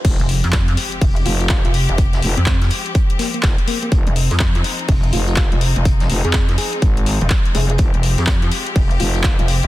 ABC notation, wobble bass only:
X:1
M:4/4
L:1/16
Q:"Swing 16ths" 1/4=124
K:Fm
V:1 name="Wobble bass" clef=bass
z F,,,2 F,,3 z2 F,,,2 z3 F,,,2 F,,,- | F,,,2 z F,,3 z8 z2 | z F,,,2 F,,3 z2 F,,,2 z3 F,,,2 F,,,- | F,,,2 z F,,3 z4 z F,,, z2 F,,,2 |
z F,,,2 F,,3 z2 F,,,2 z3 F,,,2 F,,, |]